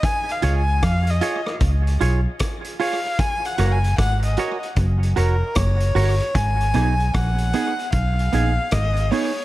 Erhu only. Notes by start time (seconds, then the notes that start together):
0.04 G#5
0.32 F5
0.57 G#5
0.84 F5
1.10 D#5
2.81 F5
3.19 G#5
3.46 F#5
3.72 G#5
3.99 F#5
4.25 D#5
5.17 A#4
5.56 C#5
6.35 G#5
7.14 F#5
7.93 F5
8.73 D#5
9.11 C#5